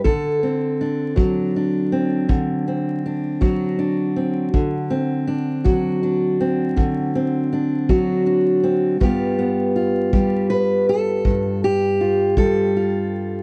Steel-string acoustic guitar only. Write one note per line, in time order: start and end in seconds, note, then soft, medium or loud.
0.04 2.28 D3 medium
0.04 3.04 A4 medium
0.43 1.92 C4 soft
0.81 1.16 D4 soft
1.16 3.40 F#3 medium
1.16 1.56 D4 soft
1.56 3.05 D4 soft
1.92 2.66 C4 soft
2.29 4.49 D3 medium
2.68 4.15 C4 soft
3.06 3.78 D4 soft
3.41 4.49 F#3 medium
3.41 5.64 F#4 medium
3.79 4.93 D4 soft
4.16 4.49 C4 soft
4.54 6.75 D3 medium
4.90 6.39 C4 medium
5.27 6.03 D4 medium
5.64 7.88 F#3 medium
5.64 7.89 F#4 medium
6.03 7.52 D4 medium
6.41 7.14 C4 medium
6.76 8.96 D3 medium
7.15 8.62 C4 medium
7.53 8.26 D4 medium
7.89 8.97 F#3 medium
7.89 9.01 F#4 medium
8.27 9.02 D4 medium
8.63 8.96 C4 soft
9.00 11.24 G2 medium
9.00 10.13 G3 soft
9.00 9.38 B3 soft
9.00 9.75 F4 soft
9.00 10.13 G4 soft
9.39 13.43 B3 soft
9.76 11.99 F4 soft
10.13 12.36 G3 medium
10.13 10.49 G4 soft
10.50 10.87 B4 loud
10.89 11.63 A4 loud
11.25 13.43 G2 medium
11.64 12.37 G4 medium
12.01 12.74 F4 soft
12.38 13.43 G3 medium
12.38 13.43 A4 loud
12.77 13.43 F4 soft